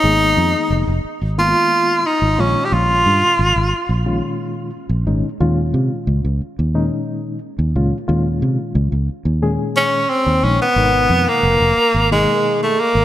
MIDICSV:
0, 0, Header, 1, 5, 480
1, 0, Start_track
1, 0, Tempo, 670391
1, 26, Time_signature, 4, 2, 24, 8
1, 9342, End_track
2, 0, Start_track
2, 0, Title_t, "Tenor saxophone"
2, 0, Program_c, 0, 66
2, 0, Note_on_c, 0, 63, 100
2, 739, Note_off_c, 0, 63, 0
2, 994, Note_on_c, 0, 65, 101
2, 1478, Note_on_c, 0, 63, 85
2, 1488, Note_off_c, 0, 65, 0
2, 1719, Note_on_c, 0, 61, 74
2, 1729, Note_off_c, 0, 63, 0
2, 1895, Note_on_c, 0, 67, 64
2, 1906, Note_off_c, 0, 61, 0
2, 1958, Note_on_c, 0, 65, 90
2, 1969, Note_off_c, 0, 67, 0
2, 2912, Note_off_c, 0, 65, 0
2, 6992, Note_on_c, 0, 61, 93
2, 7229, Note_on_c, 0, 60, 92
2, 7239, Note_off_c, 0, 61, 0
2, 7474, Note_on_c, 0, 61, 89
2, 7484, Note_off_c, 0, 60, 0
2, 7592, Note_off_c, 0, 61, 0
2, 7601, Note_on_c, 0, 59, 96
2, 8080, Note_on_c, 0, 58, 89
2, 8091, Note_off_c, 0, 59, 0
2, 8672, Note_off_c, 0, 58, 0
2, 8679, Note_on_c, 0, 56, 87
2, 9010, Note_off_c, 0, 56, 0
2, 9043, Note_on_c, 0, 57, 71
2, 9164, Note_on_c, 0, 58, 81
2, 9174, Note_off_c, 0, 57, 0
2, 9342, Note_off_c, 0, 58, 0
2, 9342, End_track
3, 0, Start_track
3, 0, Title_t, "Reed electric piano"
3, 0, Program_c, 1, 4
3, 30, Note_on_c, 1, 51, 61
3, 31, Note_on_c, 1, 58, 57
3, 31, Note_on_c, 1, 68, 69
3, 32, Note_on_c, 1, 56, 57
3, 32, Note_on_c, 1, 59, 56
3, 638, Note_off_c, 1, 51, 0
3, 639, Note_off_c, 1, 56, 0
3, 639, Note_off_c, 1, 58, 0
3, 639, Note_off_c, 1, 68, 0
3, 640, Note_off_c, 1, 59, 0
3, 988, Note_on_c, 1, 59, 60
3, 989, Note_on_c, 1, 58, 59
3, 990, Note_on_c, 1, 51, 65
3, 990, Note_on_c, 1, 65, 72
3, 993, Note_on_c, 1, 56, 60
3, 1444, Note_off_c, 1, 58, 0
3, 1444, Note_off_c, 1, 59, 0
3, 1445, Note_off_c, 1, 51, 0
3, 1445, Note_off_c, 1, 65, 0
3, 1446, Note_off_c, 1, 56, 0
3, 1707, Note_on_c, 1, 46, 64
3, 1708, Note_on_c, 1, 61, 62
3, 1709, Note_on_c, 1, 51, 58
3, 1709, Note_on_c, 1, 56, 62
3, 1709, Note_on_c, 1, 65, 74
3, 2475, Note_off_c, 1, 46, 0
3, 2475, Note_off_c, 1, 61, 0
3, 2476, Note_off_c, 1, 51, 0
3, 2476, Note_off_c, 1, 56, 0
3, 2476, Note_off_c, 1, 65, 0
3, 2906, Note_on_c, 1, 61, 69
3, 2907, Note_on_c, 1, 65, 84
3, 2908, Note_on_c, 1, 46, 75
3, 2908, Note_on_c, 1, 51, 69
3, 2909, Note_on_c, 1, 56, 66
3, 3362, Note_off_c, 1, 61, 0
3, 3363, Note_off_c, 1, 46, 0
3, 3363, Note_off_c, 1, 51, 0
3, 3363, Note_off_c, 1, 65, 0
3, 3364, Note_off_c, 1, 56, 0
3, 3629, Note_on_c, 1, 63, 76
3, 3630, Note_on_c, 1, 46, 66
3, 3631, Note_on_c, 1, 56, 61
3, 3632, Note_on_c, 1, 51, 60
3, 3632, Note_on_c, 1, 61, 64
3, 3781, Note_off_c, 1, 46, 0
3, 3781, Note_off_c, 1, 63, 0
3, 3782, Note_off_c, 1, 51, 0
3, 3782, Note_off_c, 1, 56, 0
3, 3782, Note_off_c, 1, 61, 0
3, 3869, Note_on_c, 1, 61, 68
3, 3871, Note_on_c, 1, 46, 71
3, 3871, Note_on_c, 1, 56, 69
3, 3872, Note_on_c, 1, 51, 65
3, 3872, Note_on_c, 1, 65, 85
3, 4477, Note_off_c, 1, 61, 0
3, 4478, Note_off_c, 1, 46, 0
3, 4478, Note_off_c, 1, 56, 0
3, 4479, Note_off_c, 1, 51, 0
3, 4479, Note_off_c, 1, 65, 0
3, 4829, Note_on_c, 1, 46, 75
3, 4829, Note_on_c, 1, 56, 68
3, 4830, Note_on_c, 1, 51, 68
3, 4833, Note_on_c, 1, 61, 69
3, 4834, Note_on_c, 1, 63, 87
3, 5284, Note_off_c, 1, 46, 0
3, 5284, Note_off_c, 1, 51, 0
3, 5284, Note_off_c, 1, 56, 0
3, 5286, Note_off_c, 1, 61, 0
3, 5286, Note_off_c, 1, 63, 0
3, 5555, Note_on_c, 1, 51, 60
3, 5557, Note_on_c, 1, 46, 71
3, 5557, Note_on_c, 1, 56, 62
3, 5557, Note_on_c, 1, 61, 61
3, 5557, Note_on_c, 1, 65, 75
3, 5704, Note_off_c, 1, 46, 0
3, 5704, Note_off_c, 1, 51, 0
3, 5705, Note_off_c, 1, 56, 0
3, 5705, Note_off_c, 1, 61, 0
3, 5705, Note_off_c, 1, 65, 0
3, 5785, Note_on_c, 1, 65, 81
3, 5786, Note_on_c, 1, 51, 71
3, 5788, Note_on_c, 1, 46, 77
3, 5788, Note_on_c, 1, 56, 71
3, 5789, Note_on_c, 1, 61, 66
3, 6396, Note_off_c, 1, 51, 0
3, 6396, Note_off_c, 1, 65, 0
3, 6397, Note_off_c, 1, 46, 0
3, 6397, Note_off_c, 1, 56, 0
3, 6397, Note_off_c, 1, 61, 0
3, 6746, Note_on_c, 1, 46, 83
3, 6748, Note_on_c, 1, 56, 75
3, 6749, Note_on_c, 1, 51, 72
3, 6750, Note_on_c, 1, 61, 69
3, 6750, Note_on_c, 1, 68, 88
3, 7202, Note_off_c, 1, 46, 0
3, 7203, Note_off_c, 1, 56, 0
3, 7204, Note_off_c, 1, 51, 0
3, 7204, Note_off_c, 1, 61, 0
3, 7204, Note_off_c, 1, 68, 0
3, 7469, Note_on_c, 1, 51, 54
3, 7469, Note_on_c, 1, 56, 54
3, 7469, Note_on_c, 1, 63, 64
3, 7470, Note_on_c, 1, 46, 58
3, 7471, Note_on_c, 1, 61, 52
3, 7621, Note_off_c, 1, 51, 0
3, 7621, Note_off_c, 1, 56, 0
3, 7621, Note_off_c, 1, 63, 0
3, 7622, Note_off_c, 1, 46, 0
3, 7622, Note_off_c, 1, 61, 0
3, 7714, Note_on_c, 1, 51, 56
3, 7715, Note_on_c, 1, 47, 65
3, 7715, Note_on_c, 1, 56, 60
3, 7715, Note_on_c, 1, 70, 61
3, 7716, Note_on_c, 1, 63, 70
3, 8320, Note_off_c, 1, 51, 0
3, 8321, Note_off_c, 1, 47, 0
3, 8321, Note_off_c, 1, 56, 0
3, 8321, Note_off_c, 1, 63, 0
3, 8321, Note_off_c, 1, 70, 0
3, 8674, Note_on_c, 1, 47, 64
3, 8675, Note_on_c, 1, 58, 62
3, 8676, Note_on_c, 1, 56, 60
3, 8677, Note_on_c, 1, 51, 63
3, 8678, Note_on_c, 1, 63, 77
3, 9127, Note_off_c, 1, 47, 0
3, 9128, Note_off_c, 1, 56, 0
3, 9128, Note_off_c, 1, 58, 0
3, 9129, Note_off_c, 1, 51, 0
3, 9129, Note_off_c, 1, 63, 0
3, 9342, End_track
4, 0, Start_track
4, 0, Title_t, "Fingered electric bass"
4, 0, Program_c, 2, 33
4, 25, Note_on_c, 2, 32, 87
4, 247, Note_off_c, 2, 32, 0
4, 266, Note_on_c, 2, 41, 86
4, 379, Note_off_c, 2, 41, 0
4, 504, Note_on_c, 2, 29, 93
4, 617, Note_off_c, 2, 29, 0
4, 625, Note_on_c, 2, 29, 85
4, 735, Note_off_c, 2, 29, 0
4, 870, Note_on_c, 2, 32, 80
4, 1090, Note_off_c, 2, 32, 0
4, 1587, Note_on_c, 2, 32, 76
4, 1696, Note_off_c, 2, 32, 0
4, 1708, Note_on_c, 2, 34, 63
4, 1819, Note_off_c, 2, 34, 0
4, 1949, Note_on_c, 2, 34, 82
4, 2168, Note_off_c, 2, 34, 0
4, 2190, Note_on_c, 2, 43, 86
4, 2301, Note_off_c, 2, 43, 0
4, 2427, Note_on_c, 2, 32, 94
4, 2539, Note_off_c, 2, 32, 0
4, 2549, Note_on_c, 2, 32, 82
4, 2657, Note_off_c, 2, 32, 0
4, 2786, Note_on_c, 2, 34, 80
4, 3008, Note_off_c, 2, 34, 0
4, 3504, Note_on_c, 2, 34, 78
4, 3614, Note_off_c, 2, 34, 0
4, 3629, Note_on_c, 2, 32, 67
4, 3740, Note_off_c, 2, 32, 0
4, 3869, Note_on_c, 2, 39, 82
4, 4088, Note_off_c, 2, 39, 0
4, 4109, Note_on_c, 2, 48, 83
4, 4220, Note_off_c, 2, 48, 0
4, 4347, Note_on_c, 2, 37, 84
4, 4459, Note_off_c, 2, 37, 0
4, 4472, Note_on_c, 2, 37, 77
4, 4578, Note_off_c, 2, 37, 0
4, 4718, Note_on_c, 2, 39, 82
4, 4934, Note_off_c, 2, 39, 0
4, 5432, Note_on_c, 2, 39, 78
4, 5538, Note_off_c, 2, 39, 0
4, 5553, Note_on_c, 2, 37, 68
4, 5662, Note_off_c, 2, 37, 0
4, 5791, Note_on_c, 2, 39, 89
4, 6009, Note_off_c, 2, 39, 0
4, 6030, Note_on_c, 2, 48, 80
4, 6140, Note_off_c, 2, 48, 0
4, 6266, Note_on_c, 2, 37, 94
4, 6378, Note_off_c, 2, 37, 0
4, 6387, Note_on_c, 2, 37, 78
4, 6495, Note_off_c, 2, 37, 0
4, 6625, Note_on_c, 2, 39, 85
4, 6847, Note_off_c, 2, 39, 0
4, 7349, Note_on_c, 2, 39, 78
4, 7457, Note_off_c, 2, 39, 0
4, 7467, Note_on_c, 2, 34, 70
4, 7579, Note_off_c, 2, 34, 0
4, 7705, Note_on_c, 2, 32, 87
4, 7926, Note_off_c, 2, 32, 0
4, 7945, Note_on_c, 2, 41, 92
4, 8058, Note_off_c, 2, 41, 0
4, 8184, Note_on_c, 2, 29, 96
4, 8297, Note_off_c, 2, 29, 0
4, 8307, Note_on_c, 2, 29, 85
4, 8416, Note_off_c, 2, 29, 0
4, 8551, Note_on_c, 2, 32, 84
4, 8771, Note_off_c, 2, 32, 0
4, 9272, Note_on_c, 2, 32, 77
4, 9342, Note_off_c, 2, 32, 0
4, 9342, End_track
5, 0, Start_track
5, 0, Title_t, "Muted fingered electric bass strokes"
5, 749, Note_on_c, 9, 29, 33
5, 820, Note_off_c, 9, 29, 0
5, 4592, Note_on_c, 9, 29, 33
5, 4664, Note_off_c, 9, 29, 0
5, 6510, Note_on_c, 9, 29, 35
5, 6581, Note_off_c, 9, 29, 0
5, 9342, End_track
0, 0, End_of_file